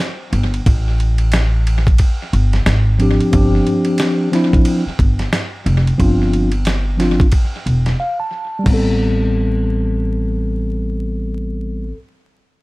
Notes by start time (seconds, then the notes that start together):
0.00 hi-hat pedal, ride
0.33 G1, ride
0.54 ride
0.66 A1, kick, ride
1.00 ride
1.18 ride
1.32 snare, hi-hat pedal, ride
1.67 ride
1.87 kick, ride
1.98 kick, ride
2.33 G1, ride
2.53 snare, ride
2.66 G#1, snare, hi-hat pedal, ride
2.99 F3 C4 D4 G4, ride
3.21 ride
3.32 G1 F3 C4 D4 G4, kick, ride
3.67 ride
3.85 ride
3.98 snare, hi-hat pedal, ride
4.31 F3 C4 D4 E4, snare, ride
4.53 A1, kick, ride
4.65 ride
4.86 muted upright bass stroke
4.99 G1, kick, ride
5.19 snare, ride
5.33 snare, hi-hat pedal, ride
5.66 F1, ride
5.87 ride
5.98 G1 F3 C4 D4 F4, kick, ride
6.33 ride
6.52 ride
6.65 snare, hi-hat pedal, ride
6.97 F3 C4 D4 F4, snare, ride
7.20 kick, ride
7.32 kick, ride
7.66 E1, ride
7.86 snare, ride
8.00 F5
8.20 A5
8.59 G3
8.64 A1 B3, kick, crash
8.69 C4
8.74 A4